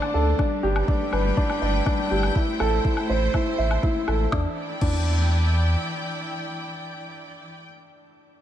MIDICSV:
0, 0, Header, 1, 5, 480
1, 0, Start_track
1, 0, Key_signature, 1, "minor"
1, 0, Tempo, 491803
1, 379, Time_signature, 4, 2, 24, 8
1, 8213, End_track
2, 0, Start_track
2, 0, Title_t, "String section"
2, 0, Program_c, 0, 48
2, 0, Note_on_c, 0, 50, 77
2, 0, Note_on_c, 0, 62, 70
2, 0, Note_on_c, 0, 72, 88
2, 0, Note_on_c, 0, 78, 63
2, 380, Note_off_c, 0, 78, 0
2, 380, Note_on_c, 0, 55, 78
2, 382, Note_off_c, 0, 50, 0
2, 382, Note_off_c, 0, 72, 0
2, 600, Note_on_c, 0, 64, 63
2, 643, Note_on_c, 0, 71, 67
2, 766, Note_on_c, 0, 79, 73
2, 1151, Note_off_c, 0, 62, 0
2, 2299, Note_off_c, 0, 55, 0
2, 2302, Note_off_c, 0, 71, 0
2, 2307, Note_on_c, 0, 57, 71
2, 2401, Note_on_c, 0, 72, 81
2, 4220, Note_on_c, 0, 52, 65
2, 4223, Note_off_c, 0, 57, 0
2, 4223, Note_off_c, 0, 64, 0
2, 4225, Note_off_c, 0, 79, 0
2, 4226, Note_off_c, 0, 72, 0
2, 4293, Note_on_c, 0, 64, 67
2, 4367, Note_on_c, 0, 74, 59
2, 4439, Note_on_c, 0, 79, 64
2, 7259, Note_off_c, 0, 52, 0
2, 7332, Note_off_c, 0, 64, 0
2, 7405, Note_off_c, 0, 74, 0
2, 7478, Note_off_c, 0, 79, 0
2, 8213, End_track
3, 0, Start_track
3, 0, Title_t, "Upright piano"
3, 0, Program_c, 1, 0
3, 0, Control_c, 1, 64, 127
3, 0, Note_on_c, 1, 62, 86
3, 0, Note_on_c, 1, 69, 90
3, 0, Note_on_c, 1, 72, 69
3, 0, Note_on_c, 1, 74, 66
3, 127, Note_off_c, 1, 62, 0
3, 138, Note_off_c, 1, 69, 0
3, 138, Note_on_c, 1, 69, 68
3, 366, Note_off_c, 1, 69, 0
3, 378, Note_on_c, 1, 62, 75
3, 389, Control_c, 1, 64, 0
3, 391, Note_off_c, 1, 72, 0
3, 392, Note_off_c, 1, 74, 0
3, 583, Control_c, 1, 64, 127
3, 606, Note_off_c, 1, 62, 0
3, 615, Note_on_c, 1, 67, 87
3, 845, Note_off_c, 1, 67, 0
3, 858, Note_on_c, 1, 62, 67
3, 1086, Note_off_c, 1, 62, 0
3, 1101, Note_on_c, 1, 71, 63
3, 1237, Note_off_c, 1, 71, 0
3, 1338, Note_on_c, 1, 62, 85
3, 1567, Note_off_c, 1, 62, 0
3, 1580, Note_on_c, 1, 74, 63
3, 1716, Note_off_c, 1, 74, 0
3, 1817, Note_on_c, 1, 62, 86
3, 2046, Note_off_c, 1, 62, 0
3, 2058, Note_on_c, 1, 67, 68
3, 2286, Note_off_c, 1, 67, 0
3, 2295, Note_on_c, 1, 64, 65
3, 2312, Control_c, 1, 64, 0
3, 2478, Control_c, 1, 64, 127
3, 2525, Note_off_c, 1, 64, 0
3, 2538, Note_on_c, 1, 69, 84
3, 2766, Note_off_c, 1, 69, 0
3, 2778, Note_on_c, 1, 64, 62
3, 3006, Note_off_c, 1, 64, 0
3, 3019, Note_on_c, 1, 72, 58
3, 3156, Note_off_c, 1, 72, 0
3, 3257, Note_on_c, 1, 64, 79
3, 3486, Note_off_c, 1, 64, 0
3, 3497, Note_on_c, 1, 76, 61
3, 3635, Note_off_c, 1, 76, 0
3, 3738, Note_on_c, 1, 64, 82
3, 3966, Note_off_c, 1, 64, 0
3, 3979, Note_on_c, 1, 69, 60
3, 4207, Note_off_c, 1, 69, 0
3, 4218, Note_on_c, 1, 62, 72
3, 4230, Control_c, 1, 64, 0
3, 4353, Note_off_c, 1, 62, 0
3, 4404, Control_c, 1, 64, 127
3, 4698, Note_on_c, 1, 62, 67
3, 4832, Note_off_c, 1, 62, 0
3, 8213, End_track
4, 0, Start_track
4, 0, Title_t, "Sub bass"
4, 0, Program_c, 2, 38
4, 140, Note_on_c, 2, 38, 77
4, 325, Note_off_c, 2, 38, 0
4, 618, Note_on_c, 2, 31, 87
4, 805, Note_off_c, 2, 31, 0
4, 1099, Note_on_c, 2, 31, 90
4, 1285, Note_off_c, 2, 31, 0
4, 1578, Note_on_c, 2, 31, 92
4, 1765, Note_off_c, 2, 31, 0
4, 2058, Note_on_c, 2, 31, 72
4, 2245, Note_off_c, 2, 31, 0
4, 2540, Note_on_c, 2, 33, 84
4, 2725, Note_off_c, 2, 33, 0
4, 3021, Note_on_c, 2, 33, 85
4, 3206, Note_off_c, 2, 33, 0
4, 3499, Note_on_c, 2, 33, 83
4, 3685, Note_off_c, 2, 33, 0
4, 3980, Note_on_c, 2, 33, 91
4, 4166, Note_off_c, 2, 33, 0
4, 4219, Note_on_c, 2, 40, 75
4, 4353, Note_off_c, 2, 40, 0
4, 4699, Note_on_c, 2, 40, 79
4, 5620, Note_off_c, 2, 40, 0
4, 8213, End_track
5, 0, Start_track
5, 0, Title_t, "Drums"
5, 21, Note_on_c, 9, 77, 57
5, 119, Note_off_c, 9, 77, 0
5, 380, Note_on_c, 9, 36, 100
5, 381, Note_on_c, 9, 77, 53
5, 478, Note_off_c, 9, 36, 0
5, 478, Note_off_c, 9, 77, 0
5, 740, Note_on_c, 9, 77, 54
5, 838, Note_off_c, 9, 77, 0
5, 860, Note_on_c, 9, 36, 91
5, 957, Note_off_c, 9, 36, 0
5, 1100, Note_on_c, 9, 77, 53
5, 1198, Note_off_c, 9, 77, 0
5, 1339, Note_on_c, 9, 36, 91
5, 1437, Note_off_c, 9, 36, 0
5, 1461, Note_on_c, 9, 77, 51
5, 1559, Note_off_c, 9, 77, 0
5, 1819, Note_on_c, 9, 36, 94
5, 1820, Note_on_c, 9, 77, 54
5, 1917, Note_off_c, 9, 36, 0
5, 1917, Note_off_c, 9, 77, 0
5, 2179, Note_on_c, 9, 77, 52
5, 2277, Note_off_c, 9, 77, 0
5, 2299, Note_on_c, 9, 36, 91
5, 2397, Note_off_c, 9, 36, 0
5, 2539, Note_on_c, 9, 77, 53
5, 2636, Note_off_c, 9, 77, 0
5, 2779, Note_on_c, 9, 36, 91
5, 2877, Note_off_c, 9, 36, 0
5, 2898, Note_on_c, 9, 77, 55
5, 2996, Note_off_c, 9, 77, 0
5, 3260, Note_on_c, 9, 36, 80
5, 3260, Note_on_c, 9, 77, 52
5, 3358, Note_off_c, 9, 36, 0
5, 3358, Note_off_c, 9, 77, 0
5, 3620, Note_on_c, 9, 77, 48
5, 3718, Note_off_c, 9, 77, 0
5, 3740, Note_on_c, 9, 36, 89
5, 3837, Note_off_c, 9, 36, 0
5, 3980, Note_on_c, 9, 77, 53
5, 4078, Note_off_c, 9, 77, 0
5, 4219, Note_on_c, 9, 38, 63
5, 4220, Note_on_c, 9, 36, 92
5, 4317, Note_off_c, 9, 36, 0
5, 4317, Note_off_c, 9, 38, 0
5, 4698, Note_on_c, 9, 49, 65
5, 4699, Note_on_c, 9, 36, 89
5, 4796, Note_off_c, 9, 36, 0
5, 4796, Note_off_c, 9, 49, 0
5, 8213, End_track
0, 0, End_of_file